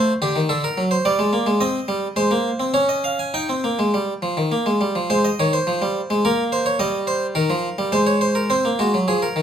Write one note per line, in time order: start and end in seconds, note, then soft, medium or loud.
0.00 0.12 A3 medium
0.00 0.11 C5 medium
0.22 0.35 D3 medium
0.22 0.39 G4 medium
0.36 0.49 D#3 medium
0.49 0.67 D3 medium
0.49 0.63 A4 medium
0.64 0.81 A#4 medium
0.78 0.95 F#3 medium
0.91 1.05 C5 medium
1.05 1.19 G3 medium
1.05 1.59 D5 medium
1.19 1.32 G#3 medium
1.33 1.46 A#3 medium
1.46 1.60 G#3 medium
1.61 1.78 C4 loud
1.61 2.15 D#5 medium
1.88 2.06 G3 medium
2.16 2.31 G#3 medium
2.16 2.72 C5 medium
2.31 2.49 A#3 medium
2.60 2.74 C4 medium
2.74 3.31 C#4 medium
2.74 2.88 C#5 medium
2.89 3.03 D#5 medium
3.04 3.18 F5 medium
3.19 3.33 G#5 medium
3.34 3.48 D#4 medium
3.34 4.77 G5 medium
3.49 3.63 C4 medium
3.64 3.78 A#3 medium
3.79 3.93 G#3 medium
3.94 4.12 G3 medium
4.22 4.36 F3 medium
4.37 4.51 D#3 medium
4.52 4.66 A#3 medium
4.66 4.80 G#3 medium
4.81 4.95 G3 medium
4.95 5.10 F3 medium
5.10 5.28 G#3 medium
5.10 5.24 C5 medium
5.25 5.39 D#5 medium
5.39 5.57 D#3 medium
5.39 5.53 C#5 medium
5.53 6.22 C5 medium
5.67 5.81 F3 medium
5.82 5.99 G3 medium
6.10 6.24 G#3 medium
6.25 6.78 A#3 loud
6.25 6.42 A#4 medium
6.52 6.66 C5 medium
6.66 6.79 C#5 medium
6.79 7.34 G3 loud
6.79 6.97 D#5 medium
7.07 7.25 C5 medium
7.35 7.49 D#3 loud
7.35 7.91 A#4 medium
7.50 7.67 F3 medium
7.78 7.92 G3 medium
7.92 8.49 G#3 loud
7.92 8.06 C5 medium
8.06 8.21 C#5 medium
8.21 8.35 C5 medium
8.35 8.50 A#4 medium
8.50 8.64 C4 medium
8.50 8.68 C5 medium
8.65 8.79 A#3 medium
8.79 8.93 G#3 medium
8.79 8.97 F#4 medium
8.94 9.08 F#3 medium
9.08 9.25 F3 medium
9.08 9.22 G#4 medium
9.22 9.40 A#4 medium
9.36 9.42 D#3 medium